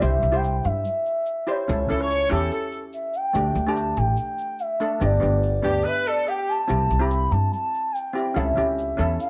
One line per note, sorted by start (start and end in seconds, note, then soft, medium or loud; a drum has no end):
0.00 0.20 C2 medium
0.00 0.20 E4 medium
0.00 0.20 G4 medium
0.00 0.21 C5 medium
0.00 0.37 E5 loud
0.00 shaker medium
0.22 0.58 C2 medium
0.22 shaker medium
0.32 0.82 E4 medium
0.32 0.82 G4 medium
0.32 0.83 C5 medium
0.32 0.67 G5 loud
0.44 shaker loud
0.64 0.82 G2 medium
0.64 1.06 E5 loud
0.64 shaker medium
0.85 shaker medium
1.06 1.45 E5 loud
1.06 shaker medium
1.26 shaker medium
1.47 1.60 E4 medium
1.47 1.61 G4 medium
1.47 1.61 C5 medium
1.47 1.56 C#5 medium
1.47 shaker medium
1.58 1.64 C#5 medium
1.65 1.81 C#4 medium
1.65 1.82 E4 medium
1.65 1.71 C#5 medium
1.65 shaker medium
1.69 1.87 C#2 loud
1.69 1.82 A4 medium
1.69 1.79 C#5 medium
1.80 1.86 C#5 medium
1.87 2.25 C#2 medium
1.87 2.14 C#4 medium
1.87 2.15 E4 medium
1.87 2.15 A4 medium
1.87 2.00 A4 medium
1.87 1.93 C#5 soft
1.87 shaker medium
1.95 2.01 C#5 medium
2.02 2.31 C#5 loud
2.02 2.08 C#5 medium
2.09 2.15 C#5 medium
2.09 shaker medium
2.16 2.23 C#5 medium
2.30 2.49 E2 medium
2.30 2.81 C#4 medium
2.30 2.81 E4 medium
2.30 2.82 G4 medium
2.30 2.50 A4 medium
2.30 shaker medium
2.51 2.81 A4 medium
2.51 shaker loud
2.72 shaker medium
2.93 3.17 E5 medium
2.93 shaker loud
3.14 3.69 G5 loud
3.14 shaker medium
3.33 3.53 D2 medium
3.33 3.53 A3 medium
3.33 3.54 D4 medium
3.33 3.54 G4 medium
3.33 shaker loud
3.55 3.91 D2 medium
3.55 shaker medium
3.66 4.16 A3 medium
3.66 4.17 D4 medium
3.66 4.17 G4 medium
3.66 3.97 A5 loud
3.76 shaker loud
3.97 4.15 A1 medium
3.97 4.17 G5 medium
3.97 shaker medium
4.17 4.57 G5 loud
4.17 shaker loud
4.38 shaker medium
4.59 4.99 E5 loud
4.59 shaker medium
4.80 4.94 A3 medium
4.80 4.94 D4 medium
4.80 4.94 A4 medium
4.80 shaker medium
5.00 5.19 G1 loud
5.00 5.14 B3 medium
5.00 5.15 D4 medium
5.00 5.15 G4 medium
5.00 5.41 D5 loud
5.00 shaker medium
5.20 5.58 G1 medium
5.20 5.47 B3 medium
5.20 5.47 D4 medium
5.20 5.48 G4 medium
5.20 shaker medium
5.43 5.83 D5 loud
5.43 shaker medium
5.62 5.83 D2 medium
5.62 6.14 B3 medium
5.62 6.14 D4 medium
5.62 5.83 G4 medium
5.62 6.15 G4 medium
5.62 shaker medium
5.84 6.06 B4 loud
5.84 5.96 E5 medium
5.84 shaker loud
6.06 6.27 A4 loud
6.06 6.29 D5 loud
6.06 shaker medium
6.28 6.60 G4 medium
6.28 6.50 G5 loud
6.28 shaker medium
6.48 7.02 A5 loud
6.48 shaker medium
6.68 6.87 C2 loud
6.68 6.87 C4 medium
6.68 6.87 E4 medium
6.68 6.88 G4 medium
6.68 shaker loud
6.90 7.26 C2 medium
6.90 shaker medium
6.99 7.50 C4 medium
6.99 7.50 E4 medium
6.99 7.51 G4 medium
6.99 7.33 B5 loud
7.11 shaker loud
7.31 7.49 G2 medium
7.31 7.52 A5 loud
7.31 shaker medium
7.53 shaker medium
7.74 shaker medium
7.92 8.37 G5 loud
7.92 shaker medium
8.13 8.27 C4 medium
8.13 8.28 E4 medium
8.13 8.28 G4 medium
8.13 shaker medium
8.34 8.54 C#2 medium
8.34 8.48 C#4 medium
8.34 8.49 E4 medium
8.34 8.49 A4 medium
8.34 8.77 E5 loud
8.34 shaker medium
8.56 8.92 C#2 medium
8.56 8.81 C#4 medium
8.56 8.82 E4 medium
8.56 8.82 G4 medium
8.56 shaker medium
8.78 9.17 E5 loud
8.78 shaker medium
8.97 9.16 E2 medium
8.97 9.30 C#4 medium
8.97 9.30 E4 medium
8.97 9.30 A4 medium
8.97 shaker medium
9.20 9.30 F5 loud
9.20 shaker loud